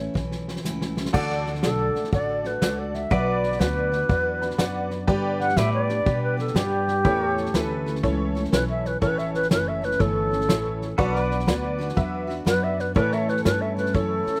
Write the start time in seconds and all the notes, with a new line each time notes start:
Already playing: E4 C#5
0.00 A3 C#4
0.14 B1 E3 A3 C#4 E4, kick, snare
0.32 snare
0.48 snare
0.56 snare
0.64 C#2 A2 E3 A3 C#4 E4, snare, hi-hat pedal
0.81 snare
0.96 A3 C#4 E4, snare
1.05 snare
1.13 D2 D3 A3 D4 F#4 A4 D5, kick, snare, crash
1.30 snare
1.46 snare
1.55 snare
1.62 B1 D3 A3 D4 F#4 A4 D5, snare, hi-hat pedal
1.95 A3 D4 F#4, muted upright bass stroke, snare
2.04 snare
2.12 A1 D3 A3 D4 F#4 A4 D5, kick, snare
2.44 A3 D4 F#4 B4, snare
2.62 C#2 A3 D4 F#4 A4 D5, snare, hi-hat pedal
2.79 D5
2.94 E5, snare
3.10 B1 B2 F#3 B3 D4 F#4 B4 D5, kick, snare
3.28 D5
3.43 snare
3.52 snare
3.59 D2 F#3 B3 D4 F#4 B4 D5, snare, hi-hat pedal
3.92 B3 D4 F#4, snare
4.09 E2 F#3 B3 D4 F#4 B4 D5, kick, snare
4.42 B3 D4 F#4 B5, snare
4.50 snare
4.58 F#2 F#3 B3 D4 F#4 B4 D5 F#5, snare, hi-hat pedal
4.90 D5, snare
5.07 G2 D3 G3 B3 D4 G4 B4 D5, kick, snare
5.40 F#5, snare
5.49 snare
5.57 A2 G3 B3 D4 G4 B4 D5 E5, snare, hi-hat pedal
5.74 D5
5.89 G3 B3 D4 G4, snare
6.06 B2 G3 B3 D4 G4 B4 D5, kick, snare
6.23 B4
6.37 G3 B3 D4 G4 A4, snare
6.47 snare
6.55 G2 G3 B3 D4 G4 B4 D5, snare, hi-hat pedal
6.88 snare
7.04 E2 A2 E3 A3 C#4 E4 A4 B4 C#5 D5, kick, snare
7.26 C#5
7.30 A4
7.37 snare
7.46 snare
7.54 D2 E3 A3 C#4 E4 A4 B4, snare, hi-hat pedal
7.86 A3 C#4 A4, snare
7.95 snare
8.03 C#2 E3 A3 C#4 E4 A4 C#5, kick, snare
8.35 A3 C#4 A4, snare
8.45 snare
8.52 B1 E3 A3 C#4 E4 A4 B4 C#5, snare, hi-hat pedal
8.70 E5
8.85 B4, snare
9.01 A1 A2 E3 A3 C#4 E4 A4 B4 C#5, kick, snare
9.18 E5, snare
9.34 B4, snare
9.42 snare
9.49 F#1 E3 A3 C#4 E4 A4 B4 C#5, snare, hi-hat pedal
9.68 E5
9.82 A3 C#4 A4 B4, snare
9.91 snare
9.99 G1 E3 A3 C#4 E4 A4 C#5, kick, snare
10.31 A3 C#4 A4, snare
10.41 snare
10.49 A1 E3 C#4 E4 A4 C#5, snare, hi-hat pedal
10.82 snare
10.98 B1 B2 F#3 B3 D4 F#4 A4 B4 C#5 D5, kick, snare
11.15 D5, snare
11.23 B4
11.31 snare
11.39 snare
11.46 D2 F#3 B3 D4 F#4 B4 D5, snare, hi-hat pedal
11.78 B3 D4 F#4, snare
11.89 snare
11.95 E2 F#3 B3 D4 F#4 B4 E5, kick, snare
12.27 B3 D4 F#4, snare
12.45 F#2 F#3 B3 D4 F#4 B4 D5, snare, hi-hat pedal
12.64 E5
12.79 B4, snare
12.95 A2 E3 A3 C#4 E4 A4 B4 C#5 D5, kick, snare
13.12 E5, snare
13.17 C#5
13.22 A4
13.28 B4, snare
13.37 snare
13.44 G2 E3 A3 C#4 E4 A4 B4 C#5, snare, hi-hat pedal
13.61 E5
13.77 A3 C#4 E4 B4, snare
13.86 snare
13.93 F#2 E3 A3 C#4 E4 A4 C#5, kick, snare
14.26 A3 C#4 E4, muted upright bass stroke, snare
14.35 snare